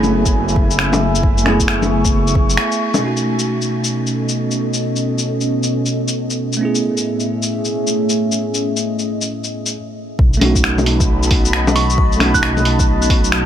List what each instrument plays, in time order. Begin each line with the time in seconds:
Already playing: detuned saw bass F#1, tine electric piano A3 B3 E4 G#4, ambient pad A3 E5 G#5 B5
0.03 low bongo, shaker
0.26 kick, shaker
0.48 shaker
0.56 kick
0.71 shaker
0.79 finger snap
0.93 low bongo, shaker
1.15 shaker
1.23 ambient pad C#6, kick
1.38 shaker
1.42 tine electric piano A3 B3, finger snap, low bongo
1.47 tine electric piano E4 G#4
1.60 kick, shaker
1.68 finger snap
1.82 low bongo, shaker
2.05 kick, shaker
2.27 shaker
2.35 kick
2.50 shaker
2.57 finger snap
2.72 shaker
2.94 low bongo, shaker
2.98 tine electric piano B2 A3, ambient pad B2 B3
3.02 tine electric piano C#4 D#4 F#4, ambient pad C#4 A4 D#5
3.17 shaker
3.39 shaker
3.62 shaker
3.84 shaker
4.07 shaker
4.29 shaker
4.51 shaker
4.74 shaker
4.96 shaker
5.18 shaker
5.41 shaker
5.63 shaker
5.86 shaker
6.08 shaker
6.30 shaker
6.53 shaker
6.57 tine electric piano A3 B3, ambient pad G#4
6.61 ambient pad A2 A3 C#4 E5, tine electric piano C#4 E4
6.65 tine electric piano G#4
6.75 shaker
6.97 shaker
7.20 shaker
7.42 shaker
7.65 shaker
7.87 shaker
8.09 shaker
8.32 shaker
8.40 ambient pad D#5
8.54 shaker
8.77 shaker
8.99 shaker
9.21 shaker
9.44 shaker
9.66 shaker
10.19 detuned saw bass B1, ambient pad F#4 D#5 A5 B5, kick
10.33 shaker
10.37 tine electric piano A3 C#4
10.41 tine electric piano D#4 F#4, open hi-hat, low bongo
10.56 kick, shaker
10.64 finger snap
10.78 low bongo, shaker
10.86 open hi-hat
11.00 kick, shaker
11.23 shaker
11.31 kick, open hi-hat
11.45 shaker
11.53 finger snap
11.67 low bongo, shaker
11.76 synth bell C#6, open hi-hat
11.90 shaker
11.98 kick
12.12 shaker
12.16 tine electric piano A3 C#4, finger snap, open hi-hat, low bongo
12.22 tine electric piano D#4 F#4
12.34 synth bell F#6, kick, shaker
12.42 synth bell F#6, finger snap
12.57 low bongo, shaker
12.65 open hi-hat
12.79 kick, shaker
13.02 shaker
13.10 kick, open hi-hat
13.24 shaker
13.32 finger snap